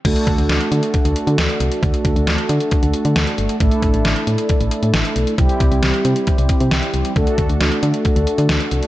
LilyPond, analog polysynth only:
\new Staff \with { instrumentName = "Analog polysynth" } { \time 4/4 \key d \mixolydian \tempo 4 = 135 <a d' fis' a'>1~ | <a d' fis' a'>1 | <a d' e' a'>1 | <g c' e' g'>1 |
<a d' fis' a'>1 | }